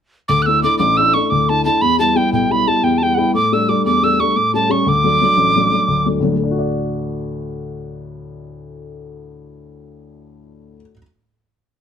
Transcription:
0.28 grand piano D2, tin whistle D6
0.42 tin whistle E6 F#6
0.47 grand piano A3 D4 E4
0.63 grand piano A3 D4 E4, tin whistle D6
0.78 grand piano A1, tin whistle D6
0.97 grand piano A3 D4 E4, tin whistle E6
1.14 grand piano A3 D4 E4, tin whistle C#6
1.30 grand piano D2, tin whistle D6
1.49 grand piano A3 D4 E4, tin whistle A5
1.65 grand piano A3 D4 E4, tin whistle A5
1.81 grand piano E2, tin whistle B5
1.99 grand piano G3 B3 E4, tin whistle A5
2.16 grand piano G3 B3 E4, tin whistle G5
2.33 grand piano B1, tin whistle G5
2.51 grand piano G3 B3 E4, tin whistle B5
2.67 grand piano G3 B3 E4, tin whistle A5
2.83 grand piano E2, tin whistle G5
2.98 tin whistle A5
3.02 grand piano G3 B3 E4, tin whistle G5
3.14 grand piano G3 B3 E4, tin whistle F#5 G5
3.34 grand piano A2, tin whistle D6
3.53 grand piano G3 A3 D4, tin whistle E6
3.69 grand piano G3 A3 D4, tin whistle D6
3.85 grand piano E2, tin whistle D6
4.03 grand piano G3 A3 D4, tin whistle E6
4.20 grand piano G3 A3 D4, tin whistle C#6
4.36 grand piano A2, tin whistle D6
4.54 grand piano G3 A3 C#4, tin whistle A5
4.69 grand piano G3 A3 C#4, tin whistle C#6
4.86 grand piano D2, tin whistle D6
5.04 grand piano F#3 A3 D4
5.21 grand piano F#3 A3 D4
5.37 grand piano A1
5.56 grand piano F#3 A3 D4
5.72 grand piano F#3 A3 D4
5.88 grand piano D2
6.06 grand piano F#3 A3 D4
6.20 grand piano D2 F#3 A3 D4
6.28 grand piano A2
6.36 grand piano A3
6.43 grand piano D4
6.51 grand piano F#4
6.59 grand piano D5

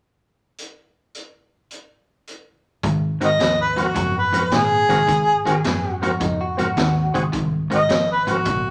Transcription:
0.58 closed hi-hat
1.15 closed hi-hat
1.71 closed hi-hat
2.27 closed hi-hat
2.83 fingered electric bass G#2, overdriven electric guitar G#2 D#3, kick, closed hi-hat
3.20 overdriven electric guitar G#2 D#3, tonewheel organ C4 F#4 A#4, closed hi-hat
3.25 harmonica D#5
3.39 fingered electric bass D#2, overdriven electric guitar G#2 F3, snare, closed hi-hat
3.61 harmonica B4
3.76 overdriven electric guitar G#2 F3, tonewheel organ C4 F#4 A#4, harmonica F#4, closed hi-hat
3.95 fingered electric bass F#2, overdriven electric guitar G#2 F3, kick, closed hi-hat
4.18 harmonica B4
4.33 overdriven electric guitar G#2 F3, tonewheel organ C4 F#4 A#4, closed hi-hat
4.51 overdriven electric guitar G#2 D#3, fingered electric bass A#2, harmonica G#4, snare, closed hi-hat
4.89 overdriven electric guitar G#2 D#3, tonewheel organ C4 F#4 A#4, kick, snare, closed hi-hat
5.07 overdriven electric guitar G#2 D#3, fingered electric bass G#2, kick, closed hi-hat
5.45 overdriven electric guitar G#2 D#3, tonewheel organ C4 F#4 A#4, clean electric guitar G#4, muted fingered electric bass stroke, closed hi-hat
5.64 fingered electric bass F#2, overdriven electric guitar G#2 F3, snare, closed hi-hat
6.01 overdriven electric guitar G#2 F3, tonewheel organ C4 F#4 A#4, clean electric guitar F#4, closed hi-hat
6.20 fingered electric bass F2, overdriven electric guitar G#2 F3, clean electric guitar D#4, kick, closed hi-hat
6.41 clean electric guitar F#4
6.57 overdriven electric guitar G#2 F3, tonewheel organ C4 F#4 A#4, clean electric guitar F#4, closed hi-hat
6.77 fingered electric bass D#2, overdriven electric guitar G#2 D#3, snare, closed hi-hat
7.14 overdriven electric guitar G#2 D#3, tonewheel organ C4 F#4 G#4, kick, closed hi-hat
7.32 fingered electric bass C2, overdriven electric guitar G#2 D#3, kick, closed hi-hat
7.70 overdriven electric guitar G#2 D#3, tonewheel organ C4 F#4 A#4, closed hi-hat
7.75 harmonica D#5
7.89 fingered electric bass G#1, overdriven electric guitar G#2 F3, snare, closed hi-hat
8.12 harmonica B4
8.27 overdriven electric guitar G#2 F3, tonewheel organ C4 F#4 A#4, closed hi-hat
8.32 harmonica F#4
8.45 fingered electric bass A#1, overdriven electric guitar G#2 F3, kick, closed hi-hat

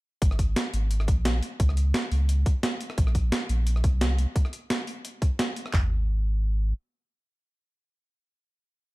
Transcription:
0.22 sub bass G#1, kick, closed hi-hat
0.31 cross-stick
0.39 kick, closed hi-hat
0.56 snare, closed hi-hat
0.74 sub bass G#1, closed hi-hat
0.91 closed hi-hat
1.00 cross-stick
1.08 sub bass A#1, kick, closed hi-hat
1.25 snare, closed hi-hat
1.43 closed hi-hat
1.60 sub bass C#2, kick, closed hi-hat
1.69 cross-stick
1.77 closed hi-hat
1.94 snare, closed hi-hat
2.12 sub bass C#2, open hi-hat
2.29 closed hi-hat
2.46 kick, closed hi-hat
2.63 snare, closed hi-hat
2.81 closed hi-hat
2.90 cross-stick
2.98 sub bass A#1, kick, closed hi-hat
3.07 cross-stick
3.15 kick, closed hi-hat
3.32 snare, closed hi-hat
3.49 sub bass A#1, closed hi-hat
3.67 closed hi-hat
3.76 cross-stick
3.84 sub bass C2, kick, closed hi-hat
4.01 snare, closed hi-hat
4.18 closed hi-hat
4.36 kick, closed hi-hat
4.45 cross-stick
4.53 closed hi-hat
4.70 snare, closed hi-hat
4.87 open hi-hat
5.05 closed hi-hat
5.22 kick, closed hi-hat
5.39 snare, closed hi-hat
5.56 closed hi-hat
5.66 cross-stick
5.74 sub bass G#1, kick, clap, floor tom

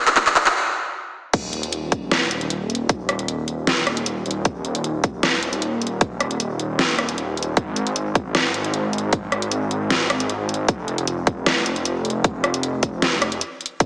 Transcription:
0.07 clap, closed hi-hat
0.16 kick, clap, closed hi-hat
0.27 clap
0.36 clap, closed hi-hat
0.46 clap
1.33 detuned saw bass D#1, kick, closed hi-hat, crash
1.53 closed hi-hat
1.63 closed hi-hat
1.73 closed hi-hat
1.92 kick, closed hi-hat
2.11 cross-stick, snare, closed hi-hat
2.31 closed hi-hat
2.41 closed hi-hat
2.50 closed hi-hat
2.70 closed hi-hat
2.75 closed hi-hat
2.89 kick, closed hi-hat
3.09 cross-stick, closed hi-hat
3.19 closed hi-hat
3.28 closed hi-hat
3.48 closed hi-hat
3.67 snare, closed hi-hat
3.87 cross-stick, closed hi-hat
3.97 closed hi-hat
4.06 closed hi-hat
4.26 detuned saw bass D#1, closed hi-hat
4.31 closed hi-hat
4.45 kick, closed hi-hat
4.65 closed hi-hat
4.75 closed hi-hat
4.84 closed hi-hat
5.04 kick, closed hi-hat
5.23 cross-stick, snare, closed hi-hat
5.43 closed hi-hat
5.53 closed hi-hat
5.62 closed hi-hat
5.82 closed hi-hat
5.87 closed hi-hat
6.01 kick, closed hi-hat
6.20 cross-stick, closed hi-hat
6.31 closed hi-hat
6.40 closed hi-hat
6.59 closed hi-hat
6.79 snare, closed hi-hat
6.99 cross-stick, closed hi-hat
7.09 closed hi-hat
7.18 closed hi-hat
7.37 closed hi-hat
7.43 closed hi-hat
7.57 detuned saw bass G#1, kick, closed hi-hat
7.76 closed hi-hat
7.87 closed hi-hat
7.96 closed hi-hat
8.15 kick, closed hi-hat
8.35 cross-stick, snare, closed hi-hat
8.54 closed hi-hat
8.64 closed hi-hat
8.74 closed hi-hat
8.93 closed hi-hat
8.98 closed hi-hat
9.13 kick, closed hi-hat
9.32 cross-stick, closed hi-hat
9.42 closed hi-hat
9.51 closed hi-hat
9.71 closed hi-hat
9.90 snare, closed hi-hat
10.10 cross-stick, closed hi-hat
10.20 closed hi-hat
10.29 closed hi-hat
10.49 closed hi-hat
10.54 closed hi-hat
10.68 detuned saw bass F1, kick, closed hi-hat
10.88 closed hi-hat
10.98 closed hi-hat
11.07 closed hi-hat
11.27 kick, closed hi-hat
11.46 cross-stick, snare, closed hi-hat
11.66 closed hi-hat
11.76 closed hi-hat
11.85 closed hi-hat
12.05 closed hi-hat
12.10 closed hi-hat
12.24 kick, closed hi-hat
12.44 cross-stick, closed hi-hat
12.54 closed hi-hat
12.63 closed hi-hat
12.83 kick, closed hi-hat
13.02 snare, closed hi-hat
13.22 cross-stick, closed hi-hat
13.32 closed hi-hat
13.41 closed hi-hat
13.61 closed hi-hat
13.66 closed hi-hat
13.80 detuned saw bass D#1, kick, closed hi-hat

